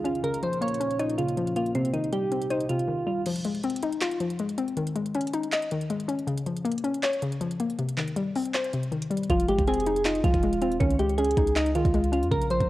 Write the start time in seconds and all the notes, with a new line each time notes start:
Already playing: C#3 D#3 G#3 C#4 D#4 G#4 D#5
0.04 C#4 F4, closed hi-hat
0.15 closed hi-hat
0.23 A#2 C#3 A#3 C#4 F4 A#4, closed hi-hat
0.34 closed hi-hat
0.43 F3 C5, closed hi-hat
0.53 closed hi-hat
0.61 A#3 C#5, closed hi-hat
0.68 closed hi-hat
0.74 closed hi-hat
0.80 C#4, closed hi-hat
0.91 closed hi-hat
0.99 D#4 C#5, closed hi-hat
1.10 closed hi-hat
1.18 C#3 F4, closed hi-hat
1.28 closed hi-hat
1.37 F3, closed hi-hat
1.47 closed hi-hat
1.56 A#3 F4, closed hi-hat
1.66 closed hi-hat
1.75 C3 C4 D#4 G4, closed hi-hat
1.85 closed hi-hat
1.94 D#3 D#4, closed hi-hat
2.04 closed hi-hat
2.12 G3 G4, closed hi-hat
2.32 C4, closed hi-hat
2.42 closed hi-hat
2.50 D#4 C5, closed hi-hat
2.60 closed hi-hat
2.69 C3 F4, closed hi-hat
2.79 closed hi-hat
2.88 D#3
3.07 G3 F4
3.26 F3, closed hi-hat, crash
3.36 closed hi-hat
3.45 G#3, closed hi-hat
3.55 closed hi-hat
3.64 C4, closed hi-hat
3.70 closed hi-hat
3.76 closed hi-hat
3.83 D#4, closed hi-hat
3.93 closed hi-hat
4.01 F4, clap, closed hi-hat
4.11 closed hi-hat
4.20 F3, closed hi-hat
4.30 closed hi-hat
4.39 G#3, closed hi-hat
4.49 closed hi-hat
4.58 C4, closed hi-hat
4.68 closed hi-hat
4.77 D#3, closed hi-hat
4.87 closed hi-hat
4.96 G#3, closed hi-hat
5.06 closed hi-hat
5.15 C#4, closed hi-hat
5.21 closed hi-hat
5.27 closed hi-hat
5.33 D#4, closed hi-hat
5.43 closed hi-hat
5.52 D#5, clap, closed hi-hat
5.62 closed hi-hat
5.71 D#3, closed hi-hat
5.81 closed hi-hat
5.90 G#3, closed hi-hat
6.00 closed hi-hat
6.08 C#4, closed hi-hat
6.19 closed hi-hat
6.27 C#3, closed hi-hat
6.38 closed hi-hat
6.46 F3, closed hi-hat
6.57 closed hi-hat
6.65 A#3, closed hi-hat
6.72 closed hi-hat
6.78 closed hi-hat
6.84 C#4, closed hi-hat
6.94 closed hi-hat
7.03 C#5, clap, closed hi-hat
7.13 closed hi-hat
7.22 C#3, closed hi-hat
7.32 closed hi-hat
7.41 F3, closed hi-hat
7.51 closed hi-hat
7.60 A#3, closed hi-hat
7.70 closed hi-hat
7.79 C3, closed hi-hat
7.89 closed hi-hat
7.97 D#3, clap, closed hi-hat
8.08 closed hi-hat
8.16 G3, closed hi-hat
8.35 C4, open hi-hat
8.45 closed hi-hat
8.54 C5, clap, closed hi-hat
8.64 closed hi-hat
8.73 C3, closed hi-hat
8.83 closed hi-hat
8.92 D#3, closed hi-hat
9.02 closed hi-hat
9.10 G3, closed hi-hat
9.17 closed hi-hat
9.23 closed hi-hat
9.30 F1 F3 F4, kick, closed hi-hat
9.40 closed hi-hat
9.48 G#1 G#3 G4, closed hi-hat
9.59 F1, kick, closed hi-hat
9.67 C4 G#4, closed hi-hat
9.74 closed hi-hat
9.80 closed hi-hat
9.86 D#4, closed hi-hat
9.96 closed hi-hat
10.05 D#4 F4, clap, closed hi-hat
10.15 closed hi-hat
10.24 C2 F3 F4, kick, closed hi-hat
10.34 F1, kick, closed hi-hat
10.43 G#3, closed hi-hat
10.53 D#1, closed hi-hat
10.62 C4 F4, closed hi-hat
10.72 closed hi-hat
10.80 C#2 D#3 C#4, kick, closed hi-hat
10.91 closed hi-hat
10.99 G#3 G4, closed hi-hat
11.10 closed hi-hat
11.18 C#4 G#4, closed hi-hat
11.25 closed hi-hat
11.31 closed hi-hat
11.37 C#2 D#4, kick, closed hi-hat
11.47 closed hi-hat
11.56 D#4 D#5, clap, closed hi-hat
11.66 closed hi-hat
11.75 D#3 F4, closed hi-hat
11.85 C#2, kick, closed hi-hat
11.94 G#3, closed hi-hat
12.04 closed hi-hat
12.12 C#4 F4, closed hi-hat
12.23 F2, closed hi-hat
12.31 A#1 C#3 A#4, kick, closed hi-hat
12.41 closed hi-hat
12.50 F3 C5, closed hi-hat
12.60 A#1, kick, closed hi-hat